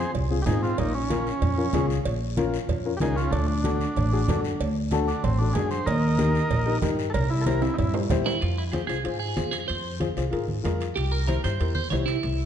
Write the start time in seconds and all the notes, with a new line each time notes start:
Already playing: G#4 C5
0.15 C2, cowbell, high conga, low conga, long guiro
0.30 C4 F4 G#4
0.42 D#4 G4
0.46 G#2 C4 F4 G#4, cowbell, high conga, low conga, low timbale, short guiro
0.62 C4 F4, short guiro
0.78 A#1 A#3 D#4, cowbell, high conga, low conga, long guiro
0.95 C#4
1.10 C#4 F4 A#4, cowbell, high conga, short guiro
1.27 short guiro
1.42 F2, cowbell, high conga, low conga, long guiro
1.57 C#4 F4 A#4
1.73 C#2 C#4 F4 G#4, cowbell, high conga, low conga, low timbale, short guiro
1.90 short guiro
2.05 A#1, cowbell, high conga, long guiro
2.37 C#4 F4 A#4, cowbell, high conga, short guiro
2.54 short guiro
2.69 F2, cowbell, high conga, low conga, long guiro
2.85 C#4 F4 A#4
2.97 C#2 C#4 F4 G4 A#4, high conga
3.01 D#4 G#4, cowbell, low timbale, short guiro
3.16 C#4 F4, short guiro
3.31 D2 A3 D4, cowbell, high conga, low conga, long guiro
3.48 D4
3.64 D4 F#4 A4, cowbell, high conga, short guiro
3.81 short guiro
3.96 A1, cowbell, high conga, low conga, long guiro
4.13 D4 F#4 G#4
4.28 F#2 D4 F#4 A4, cowbell, high conga, low conga, low timbale, short guiro
4.45 short guiro
4.60 D2, cowbell, high conga, long guiro
4.91 D4 F#4 A4, cowbell, high conga, short guiro
5.08 D4, short guiro
5.24 A1 C4, cowbell, high conga, low conga, long guiro
5.39 D4 F#4 A4
5.54 F#2 D4 F#4 G#4, cowbell, high conga, low timbale, short guiro
5.71 C5, short guiro
5.86 D#2 A#4 D#5, cowbell, high conga, low conga, long guiro
6.18 D#4 G4 A#4, cowbell, high conga, short guiro
6.35 short guiro
6.51 A#1, cowbell, high conga, low conga, long guiro
6.66 D#4 G4 A#4
6.82 G2 D#4 G4 A#4, cowbell, high conga, low conga, low timbale, short guiro
6.99 short guiro
7.10 A4
7.14 C2 A#4, cowbell, high conga, low conga, long guiro
7.30 E4
7.41 A4
7.46 E4 G4 A#4 C5, cowbell, high conga, short guiro
7.62 E4, high timbale, short guiro
7.74 D#4
7.78 G2 E4, cowbell, high conga, low conga, long guiro
7.94 E4 G4 C5, low timbale
8.10 E2 E4 G4 C5, cowbell, high conga, low conga, low timbale, short guiro
8.26 E4, low timbale, short guiro
8.41 F2 F4, high timbale, long guiro
8.58 E4
8.72 F4 G4 G#4 C5, high conga, high timbale, short guiro
8.87 C2 F4 G#4 C5, high timbale, short guiro
9.04 G#2 F4 G#4 C5, high timbale, long guiro
9.19 G#4
9.36 F2 F4 G#4 C5, high conga, high timbale, short guiro
9.51 G#4, high timbale, short guiro
9.68 F2 C5, high timbale, long guiro
10.00 F4 G#4 C5, high conga, high timbale, short guiro
10.17 C2 F4 G#4 C5, high timbale, short guiro
10.31 G#2 F4 G#4 A#4, high timbale, long guiro
10.48 high conga
10.64 F2 F4 G#4 A#4, high conga, high timbale, low timbale, short guiro
10.80 high timbale, short guiro
10.96 C2 G4, high timbale, long guiro
11.12 A#4
11.27 E4 G4 A#4 C5, high conga, high timbale, short guiro
11.44 G2 E4 G4 C5, high timbale, short guiro
11.60 E2 E4 G4 A#4, high timbale, long guiro
11.75 C5, high conga
11.90 C2 E4 G4 C5 C#5, high conga, high timbale, low timbale, short guiro
12.06 E4, high timbale, short guiro
12.23 C2, high timbale, long guiro